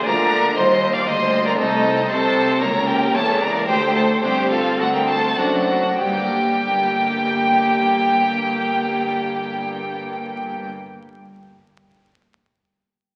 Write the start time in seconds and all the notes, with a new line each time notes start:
0.06 D2 D3 F3 G#3 A#3 F4 A#4 D5 A#5
0.56 D#2 G3 C5 D#5 C6
0.94 D5 F5 D6
1.07 D2 A#3 D#4 C5 D#5 C6
1.45 A#4 D5 A#5
1.58 C2 A3 D#4 A4 D#5
1.84 C4
2.09 C2 C3 A3 C4 D#4 A4 C5 A5
2.62 C#2 A#3 A#4 C#5 A#5
2.88 G4 A#4 G5
3.14 E1 E2 C#4 E4 A4 C#5 A5
3.40 A#4 D5 A#5
3.68 D2 A3 G4 C5 G5
3.94 A4 C5 A5
4.23 G1 G2 A3 C4 D4 G4 C5 G5
4.51 F4 A4 F5
4.79 D2 F#4 A4 F#5
4.94 G4 A#4 G5
5.08 A4 C5 A5
5.38 F#1 F#2 A3 C4 D4 F#4 A4 F#5
5.98 G1 G2 A#3 G4 G5
6.05 G3
6.13 A#3
6.19 D4
6.27 A#4